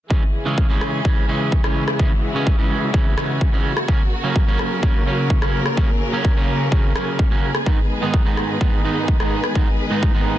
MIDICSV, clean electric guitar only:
0, 0, Header, 1, 2, 480
1, 0, Start_track
1, 0, Tempo, 472441
1, 107, Time_signature, 4, 2, 24, 8
1, 10550, End_track
2, 0, Start_track
2, 0, Title_t, "Clean electric guitar"
2, 0, Program_c, 0, 27
2, 100, Note_on_c, 0, 49, 76
2, 109, Note_on_c, 0, 52, 67
2, 109, Note_on_c, 0, 56, 69
2, 113, Note_on_c, 0, 61, 78
2, 225, Note_off_c, 0, 49, 0
2, 227, Note_off_c, 0, 52, 0
2, 229, Note_off_c, 0, 56, 0
2, 231, Note_off_c, 0, 61, 0
2, 460, Note_on_c, 0, 49, 82
2, 465, Note_on_c, 0, 52, 73
2, 469, Note_on_c, 0, 56, 76
2, 473, Note_on_c, 0, 61, 91
2, 675, Note_off_c, 0, 49, 0
2, 677, Note_off_c, 0, 52, 0
2, 679, Note_off_c, 0, 56, 0
2, 681, Note_off_c, 0, 61, 0
2, 699, Note_on_c, 0, 49, 81
2, 705, Note_on_c, 0, 52, 73
2, 708, Note_on_c, 0, 56, 72
2, 714, Note_on_c, 0, 61, 89
2, 1035, Note_off_c, 0, 49, 0
2, 1037, Note_off_c, 0, 52, 0
2, 1039, Note_off_c, 0, 56, 0
2, 1041, Note_off_c, 0, 61, 0
2, 1061, Note_on_c, 0, 49, 72
2, 1065, Note_on_c, 0, 52, 67
2, 1069, Note_on_c, 0, 56, 66
2, 1073, Note_on_c, 0, 61, 79
2, 1275, Note_off_c, 0, 49, 0
2, 1277, Note_off_c, 0, 52, 0
2, 1279, Note_off_c, 0, 56, 0
2, 1281, Note_off_c, 0, 61, 0
2, 1300, Note_on_c, 0, 49, 71
2, 1308, Note_on_c, 0, 52, 67
2, 1309, Note_on_c, 0, 56, 66
2, 1314, Note_on_c, 0, 61, 78
2, 1636, Note_off_c, 0, 49, 0
2, 1637, Note_off_c, 0, 52, 0
2, 1639, Note_off_c, 0, 56, 0
2, 1642, Note_off_c, 0, 61, 0
2, 1661, Note_on_c, 0, 49, 76
2, 1665, Note_on_c, 0, 52, 68
2, 1669, Note_on_c, 0, 56, 71
2, 1676, Note_on_c, 0, 61, 88
2, 1858, Note_off_c, 0, 49, 0
2, 1860, Note_off_c, 0, 52, 0
2, 1862, Note_off_c, 0, 56, 0
2, 1864, Note_off_c, 0, 61, 0
2, 2021, Note_on_c, 0, 49, 73
2, 2025, Note_on_c, 0, 52, 68
2, 2030, Note_on_c, 0, 56, 69
2, 2033, Note_on_c, 0, 61, 82
2, 2145, Note_off_c, 0, 49, 0
2, 2147, Note_off_c, 0, 52, 0
2, 2149, Note_off_c, 0, 56, 0
2, 2151, Note_off_c, 0, 61, 0
2, 2378, Note_on_c, 0, 49, 81
2, 2386, Note_on_c, 0, 52, 77
2, 2388, Note_on_c, 0, 56, 76
2, 2393, Note_on_c, 0, 61, 92
2, 2595, Note_off_c, 0, 49, 0
2, 2597, Note_off_c, 0, 52, 0
2, 2599, Note_off_c, 0, 56, 0
2, 2601, Note_off_c, 0, 61, 0
2, 2620, Note_on_c, 0, 49, 78
2, 2624, Note_on_c, 0, 52, 75
2, 2631, Note_on_c, 0, 56, 75
2, 2632, Note_on_c, 0, 61, 85
2, 2955, Note_off_c, 0, 49, 0
2, 2957, Note_off_c, 0, 52, 0
2, 2959, Note_off_c, 0, 56, 0
2, 2961, Note_off_c, 0, 61, 0
2, 2981, Note_on_c, 0, 49, 74
2, 2985, Note_on_c, 0, 52, 67
2, 2991, Note_on_c, 0, 56, 66
2, 2994, Note_on_c, 0, 61, 78
2, 3195, Note_off_c, 0, 49, 0
2, 3198, Note_off_c, 0, 52, 0
2, 3199, Note_off_c, 0, 56, 0
2, 3202, Note_off_c, 0, 61, 0
2, 3219, Note_on_c, 0, 49, 72
2, 3227, Note_on_c, 0, 52, 68
2, 3228, Note_on_c, 0, 56, 68
2, 3233, Note_on_c, 0, 61, 80
2, 3555, Note_off_c, 0, 49, 0
2, 3557, Note_off_c, 0, 52, 0
2, 3559, Note_off_c, 0, 56, 0
2, 3561, Note_off_c, 0, 61, 0
2, 3580, Note_on_c, 0, 49, 78
2, 3584, Note_on_c, 0, 52, 72
2, 3587, Note_on_c, 0, 56, 74
2, 3595, Note_on_c, 0, 61, 86
2, 3777, Note_off_c, 0, 49, 0
2, 3779, Note_off_c, 0, 52, 0
2, 3782, Note_off_c, 0, 56, 0
2, 3784, Note_off_c, 0, 61, 0
2, 3941, Note_on_c, 0, 49, 75
2, 3944, Note_on_c, 0, 54, 71
2, 3952, Note_on_c, 0, 58, 67
2, 3954, Note_on_c, 0, 61, 85
2, 4065, Note_off_c, 0, 49, 0
2, 4067, Note_off_c, 0, 54, 0
2, 4069, Note_off_c, 0, 58, 0
2, 4072, Note_off_c, 0, 61, 0
2, 4301, Note_on_c, 0, 49, 82
2, 4304, Note_on_c, 0, 54, 77
2, 4311, Note_on_c, 0, 58, 77
2, 4314, Note_on_c, 0, 61, 92
2, 4515, Note_off_c, 0, 49, 0
2, 4517, Note_off_c, 0, 54, 0
2, 4519, Note_off_c, 0, 58, 0
2, 4522, Note_off_c, 0, 61, 0
2, 4540, Note_on_c, 0, 49, 79
2, 4548, Note_on_c, 0, 54, 77
2, 4549, Note_on_c, 0, 58, 74
2, 4554, Note_on_c, 0, 61, 89
2, 4875, Note_off_c, 0, 49, 0
2, 4877, Note_off_c, 0, 54, 0
2, 4879, Note_off_c, 0, 58, 0
2, 4881, Note_off_c, 0, 61, 0
2, 4901, Note_on_c, 0, 49, 75
2, 4908, Note_on_c, 0, 54, 66
2, 4910, Note_on_c, 0, 58, 69
2, 4916, Note_on_c, 0, 61, 84
2, 5116, Note_off_c, 0, 49, 0
2, 5117, Note_off_c, 0, 54, 0
2, 5120, Note_off_c, 0, 58, 0
2, 5121, Note_off_c, 0, 61, 0
2, 5141, Note_on_c, 0, 49, 73
2, 5144, Note_on_c, 0, 54, 66
2, 5152, Note_on_c, 0, 58, 64
2, 5154, Note_on_c, 0, 61, 83
2, 5475, Note_off_c, 0, 49, 0
2, 5477, Note_off_c, 0, 54, 0
2, 5479, Note_off_c, 0, 58, 0
2, 5482, Note_off_c, 0, 61, 0
2, 5501, Note_on_c, 0, 49, 75
2, 5507, Note_on_c, 0, 54, 73
2, 5509, Note_on_c, 0, 58, 72
2, 5513, Note_on_c, 0, 61, 86
2, 5698, Note_off_c, 0, 49, 0
2, 5700, Note_off_c, 0, 54, 0
2, 5702, Note_off_c, 0, 58, 0
2, 5704, Note_off_c, 0, 61, 0
2, 5861, Note_on_c, 0, 49, 76
2, 5865, Note_on_c, 0, 54, 68
2, 5869, Note_on_c, 0, 58, 70
2, 5874, Note_on_c, 0, 61, 85
2, 5985, Note_off_c, 0, 49, 0
2, 5987, Note_off_c, 0, 54, 0
2, 5989, Note_off_c, 0, 58, 0
2, 5991, Note_off_c, 0, 61, 0
2, 6220, Note_on_c, 0, 49, 82
2, 6228, Note_on_c, 0, 54, 79
2, 6228, Note_on_c, 0, 58, 74
2, 6238, Note_on_c, 0, 61, 93
2, 6435, Note_off_c, 0, 49, 0
2, 6437, Note_off_c, 0, 54, 0
2, 6440, Note_off_c, 0, 58, 0
2, 6442, Note_off_c, 0, 61, 0
2, 6461, Note_on_c, 0, 49, 79
2, 6464, Note_on_c, 0, 54, 72
2, 6471, Note_on_c, 0, 58, 76
2, 6473, Note_on_c, 0, 61, 92
2, 6795, Note_off_c, 0, 49, 0
2, 6797, Note_off_c, 0, 54, 0
2, 6799, Note_off_c, 0, 58, 0
2, 6801, Note_off_c, 0, 61, 0
2, 6821, Note_on_c, 0, 49, 73
2, 6828, Note_on_c, 0, 54, 68
2, 6829, Note_on_c, 0, 58, 67
2, 6835, Note_on_c, 0, 61, 77
2, 7036, Note_off_c, 0, 49, 0
2, 7037, Note_off_c, 0, 54, 0
2, 7040, Note_off_c, 0, 58, 0
2, 7042, Note_off_c, 0, 61, 0
2, 7062, Note_on_c, 0, 49, 73
2, 7066, Note_on_c, 0, 54, 63
2, 7069, Note_on_c, 0, 58, 68
2, 7076, Note_on_c, 0, 61, 80
2, 7396, Note_off_c, 0, 49, 0
2, 7398, Note_off_c, 0, 54, 0
2, 7400, Note_off_c, 0, 58, 0
2, 7402, Note_off_c, 0, 61, 0
2, 7421, Note_on_c, 0, 49, 77
2, 7429, Note_on_c, 0, 54, 71
2, 7430, Note_on_c, 0, 58, 70
2, 7435, Note_on_c, 0, 61, 84
2, 7618, Note_off_c, 0, 49, 0
2, 7620, Note_off_c, 0, 54, 0
2, 7622, Note_off_c, 0, 58, 0
2, 7625, Note_off_c, 0, 61, 0
2, 7780, Note_on_c, 0, 44, 74
2, 7787, Note_on_c, 0, 51, 67
2, 7787, Note_on_c, 0, 56, 67
2, 7793, Note_on_c, 0, 59, 71
2, 7794, Note_on_c, 0, 63, 82
2, 7905, Note_off_c, 0, 44, 0
2, 7907, Note_off_c, 0, 51, 0
2, 7909, Note_off_c, 0, 56, 0
2, 7910, Note_off_c, 0, 59, 0
2, 7911, Note_off_c, 0, 63, 0
2, 8141, Note_on_c, 0, 44, 83
2, 8147, Note_on_c, 0, 56, 74
2, 8149, Note_on_c, 0, 51, 74
2, 8155, Note_on_c, 0, 59, 76
2, 8155, Note_on_c, 0, 63, 93
2, 8356, Note_off_c, 0, 44, 0
2, 8358, Note_off_c, 0, 51, 0
2, 8359, Note_off_c, 0, 56, 0
2, 8361, Note_off_c, 0, 59, 0
2, 8362, Note_off_c, 0, 63, 0
2, 8381, Note_on_c, 0, 44, 82
2, 8386, Note_on_c, 0, 51, 74
2, 8387, Note_on_c, 0, 56, 75
2, 8393, Note_on_c, 0, 59, 73
2, 8394, Note_on_c, 0, 63, 86
2, 8716, Note_off_c, 0, 44, 0
2, 8717, Note_off_c, 0, 51, 0
2, 8719, Note_off_c, 0, 56, 0
2, 8720, Note_off_c, 0, 59, 0
2, 8722, Note_off_c, 0, 63, 0
2, 8741, Note_on_c, 0, 44, 71
2, 8745, Note_on_c, 0, 56, 69
2, 8746, Note_on_c, 0, 51, 64
2, 8754, Note_on_c, 0, 59, 70
2, 8754, Note_on_c, 0, 63, 80
2, 8956, Note_off_c, 0, 44, 0
2, 8957, Note_off_c, 0, 51, 0
2, 8958, Note_off_c, 0, 56, 0
2, 8960, Note_off_c, 0, 59, 0
2, 8962, Note_off_c, 0, 63, 0
2, 8980, Note_on_c, 0, 44, 73
2, 8986, Note_on_c, 0, 51, 66
2, 8988, Note_on_c, 0, 56, 66
2, 8991, Note_on_c, 0, 59, 67
2, 8994, Note_on_c, 0, 63, 78
2, 9315, Note_off_c, 0, 44, 0
2, 9317, Note_off_c, 0, 51, 0
2, 9319, Note_off_c, 0, 56, 0
2, 9320, Note_off_c, 0, 59, 0
2, 9322, Note_off_c, 0, 63, 0
2, 9340, Note_on_c, 0, 44, 77
2, 9345, Note_on_c, 0, 51, 73
2, 9346, Note_on_c, 0, 56, 72
2, 9353, Note_on_c, 0, 59, 73
2, 9354, Note_on_c, 0, 63, 88
2, 9538, Note_off_c, 0, 44, 0
2, 9539, Note_off_c, 0, 51, 0
2, 9541, Note_off_c, 0, 56, 0
2, 9543, Note_off_c, 0, 59, 0
2, 9544, Note_off_c, 0, 63, 0
2, 9700, Note_on_c, 0, 44, 77
2, 9706, Note_on_c, 0, 56, 67
2, 9707, Note_on_c, 0, 51, 69
2, 9714, Note_on_c, 0, 59, 67
2, 9714, Note_on_c, 0, 63, 86
2, 9825, Note_off_c, 0, 44, 0
2, 9827, Note_off_c, 0, 51, 0
2, 9828, Note_off_c, 0, 56, 0
2, 9830, Note_off_c, 0, 59, 0
2, 9831, Note_off_c, 0, 63, 0
2, 10061, Note_on_c, 0, 44, 82
2, 10065, Note_on_c, 0, 51, 76
2, 10066, Note_on_c, 0, 56, 78
2, 10073, Note_on_c, 0, 59, 75
2, 10073, Note_on_c, 0, 63, 92
2, 10275, Note_off_c, 0, 44, 0
2, 10277, Note_off_c, 0, 51, 0
2, 10278, Note_off_c, 0, 56, 0
2, 10280, Note_off_c, 0, 59, 0
2, 10281, Note_off_c, 0, 63, 0
2, 10300, Note_on_c, 0, 44, 82
2, 10307, Note_on_c, 0, 51, 75
2, 10307, Note_on_c, 0, 56, 72
2, 10314, Note_on_c, 0, 63, 89
2, 10315, Note_on_c, 0, 59, 72
2, 10550, Note_off_c, 0, 44, 0
2, 10550, Note_off_c, 0, 51, 0
2, 10550, Note_off_c, 0, 56, 0
2, 10550, Note_off_c, 0, 59, 0
2, 10550, Note_off_c, 0, 63, 0
2, 10550, End_track
0, 0, End_of_file